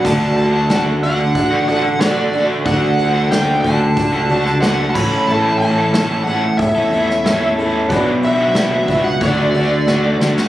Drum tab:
CC |x---------------|--------------x-|----------------|----------------|
HH |--o-o-o-o-o-o-o-|o-o-o-o-o-o-o---|--o-o-o-o-o-o-o-|o-o-o-o-o-o-----|
SD |----o-------o---|----o------oo---|----o------oo---|----o-------o-oo|
BD |o-------o-------|o-----o-o-----o-|--------o-------|o-----o-o-------|